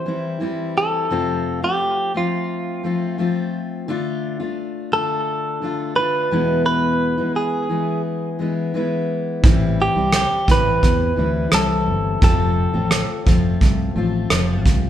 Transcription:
Already playing: clean electric guitar C5
0.06 steel-string acoustic guitar E3 G3 C4 E4
0.40 steel-string acoustic guitar E3 G3 C4 E4
0.78 clean electric guitar A4
1.10 steel-string acoustic guitar F2 C3 F3 A3 C4 F4
1.62 steel-string acoustic guitar F3 A3 C4 F4, clean electric guitar G4
2.14 steel-string acoustic guitar F3 A3 C4 F4, clean electric guitar F4
2.83 steel-string acoustic guitar F3 A3 C4 F4
3.18 steel-string acoustic guitar F3 A3 C4 F4
3.88 steel-string acoustic guitar D3 A3 D4 F4
4.40 steel-string acoustic guitar A3 D4 F4
4.92 steel-string acoustic guitar D3 A3 D4 F4, clean electric guitar A4
5.62 steel-string acoustic guitar D3 A3 D4 F4
5.96 steel-string acoustic guitar D3 A3 D4 F4, clean electric guitar B4
6.31 steel-string acoustic guitar E2 B2 E3 G#3 B3 E4
6.66 clean electric guitar B4
7.18 steel-string acoustic guitar E3 G#3 B3 E4
7.36 clean electric guitar G#4
7.69 steel-string acoustic guitar E3 G#3 B3 E4
8.39 steel-string acoustic guitar E3 G#3 B3 E4
8.74 steel-string acoustic guitar E3 G#3 B3 E4
9.43 fretless electric bass A1, steel-string acoustic guitar A2 E3 G3 C4 E4, kick
9.82 clean electric guitar G4
9.96 fretless electric bass C2, steel-string acoustic guitar G3 C4 E4
10.13 clean electric guitar G4, cross-stick
10.47 fretless electric bass A1, steel-string acoustic guitar E3 G3 C4 E4, kick
10.51 clean electric guitar B4
10.83 fretless electric bass E2, kick, cross-stick
11.16 fretless electric bass D2, steel-string acoustic guitar E3 G3 C4 E4
11.51 fretless electric bass C2, steel-string acoustic guitar E3 G3 C4 E4, clean electric guitar A4, cross-stick
11.88 fretless electric bass G1
12.21 fretless electric bass F1, steel-string acoustic guitar F2 C3 F3 A3 C4 F4, clean electric guitar A4, kick
12.73 fretless electric bass A1, steel-string acoustic guitar F3 A3 C4 F4
12.91 cross-stick
13.26 fretless electric bass F1, steel-string acoustic guitar F3 A3 C4 F4, kick
13.61 fretless electric bass C2, kick
13.96 fretless electric bass A1, steel-string acoustic guitar F3 A3 C4 F4
14.30 fretless electric bass F1, steel-string acoustic guitar F3 A3 C4 F4, cross-stick
14.66 fretless electric bass C2, kick

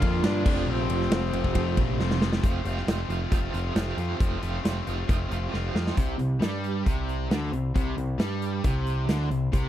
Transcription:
Already playing: distorted electric guitar A#2 F3, overdriven electric guitar A#2 D3 A#3 D4 F4, string machine A#3 D4 F4, tenor saxophone F4
0.02 picked electric bass F2, kick, ride
0.22 picked electric bass G2, distorted electric guitar A#2 F3, overdriven electric guitar D3 A#3 D4 F4, tenor saxophone D4, snare, ride
0.44 picked electric bass F1, overdriven electric guitar F2 C3 F3 A3 C4 F4, string machine A3 F4 G4, kick, crash
0.48 overdriven electric guitar F4
0.67 picked electric bass A#1, overdriven electric guitar F2 C3 F3 A3 C4 F4, tenor saxophone C4
0.89 picked electric bass F1, ride
1.01 snare
1.10 picked electric bass F1, overdriven electric guitar F2 C3 F3 A3 C4 F4, snare, ride
1.33 picked electric bass F1, distorted electric guitar F2 C3, overdriven electric guitar F3 A3 C4 F4, ride
1.44 kick
1.55 picked electric bass F1, distorted electric guitar F2 C3, overdriven electric guitar F3 A3 C4 F4, kick, ride
1.77 picked electric bass A#1, kick, ride
1.98 picked electric bass F1, distorted electric guitar F2 C3, overdriven electric guitar F3 A3 C4 F4, snare
2.11 snare
2.19 distorted electric guitar F2 C3, overdriven electric guitar F3 A3 C4 F4, snare
2.33 snare
2.41 picked electric bass F1, overdriven electric guitar F2 C3 F3 A3 C4 F4, kick, closed hi-hat
2.64 picked electric bass F1, overdriven electric guitar F2 C3 F3 A3 C4 F4, closed hi-hat
2.77 snare
2.86 picked electric bass F1, overdriven electric guitar F2 C3 F3 A3 C4 F4, snare, closed hi-hat
3.08 picked electric bass F1, overdriven electric guitar F2 C3 F3 A3 C4 F4, closed hi-hat
3.30 picked electric bass F1, overdriven electric guitar F2 C3 F3 A3 C4 F4, kick, closed hi-hat
3.51 picked electric bass F1, overdriven electric guitar F2 C3 F3 A3 C4 F4, closed hi-hat
3.74 picked electric bass F1, overdriven electric guitar F2 C3 F3 A3 C4 F4, snare, closed hi-hat
3.96 overdriven electric guitar F2 C3 F3 A3 C4 F4, picked electric bass F2, closed hi-hat
4.17 picked electric bass F1, overdriven electric guitar F2 C3 F3 A3 C4 F4, kick, closed hi-hat
4.39 picked electric bass F1, overdriven electric guitar F2 C3 F3 A3 C4 F4, closed hi-hat
4.61 picked electric bass F1, overdriven electric guitar F2 C3 F3 A3 C4 F4
4.65 overdriven electric guitar F4, snare, closed hi-hat
4.84 picked electric bass F1, overdriven electric guitar F2 C3 F3 A3 C4 F4, closed hi-hat
5.05 picked electric bass F1, overdriven electric guitar F2 C3 F3 A3 C4 F4
5.09 kick, closed hi-hat
5.28 picked electric bass F1, overdriven electric guitar F2 C3 F3 A3 C4 F4, closed hi-hat
5.49 overdriven electric guitar F2 C3 F3 A3 C4 F4
5.53 picked electric bass F1, overdriven electric guitar A3 F4, snare
5.72 overdriven electric guitar F2 C3 F3 A3 C4 F4, picked electric bass F2, snare
5.87 snare
5.95 picked electric bass C2, overdriven electric guitar C3, kick, closed hi-hat
6.17 picked electric bass C2, overdriven electric guitar C3, closed hi-hat
6.40 picked electric bass G2, overdriven electric guitar G3, snare, closed hi-hat
6.64 closed hi-hat
6.85 picked electric bass C2, overdriven electric guitar C3, kick, closed hi-hat
7.09 closed hi-hat
7.30 picked electric bass D2, overdriven electric guitar D3, snare, closed hi-hat
7.52 picked electric bass C2, overdriven electric guitar C3, closed hi-hat
7.74 picked electric bass C2, overdriven electric guitar C3, kick, closed hi-hat
7.97 picked electric bass C2, overdriven electric guitar C3, closed hi-hat
8.18 picked electric bass G2, overdriven electric guitar G3, snare, closed hi-hat
8.42 closed hi-hat
8.64 picked electric bass C2, overdriven electric guitar C3, kick, closed hi-hat
8.87 closed hi-hat
9.07 picked electric bass D2, overdriven electric guitar D3, snare, closed hi-hat
9.20 snare
9.30 picked electric bass C2, overdriven electric guitar C3, closed hi-hat
9.52 picked electric bass C2, overdriven electric guitar C3, kick, closed hi-hat

